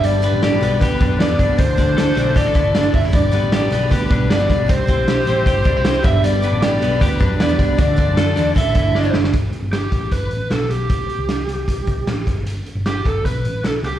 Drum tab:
HH |x-x-x-x-x-x-x-x-|x-x-x-x-x-x-x-o-|x-x-x-x-x-x-x-x-|x-x-x-x-x-x-x-x-|
SD |----o-------o---|----o-------o---|----o-------o---|----o-------o---|
BD |--------o-o---o-|o-o-----o-o---o-|o-------o-o---o-|o-o-----o-o---o-|

HH |x-x-x-x-x-x-x-x-|x-x-x-x-x-x-----|x-x-x-x-x-x-x-x-|x-x-x-x-x-x-x-x-|
SD |----o-------o---|----o-------o-oo|----o-------o---|----o-------o---|
BD |--------o-o---o-|o-o-----o-o-----|o-----o-o-------|o-------o-o---o-|

HH |x-x-x-x-x-x-x-x-|
SD |----o-------o---|
BD |------o-o-------|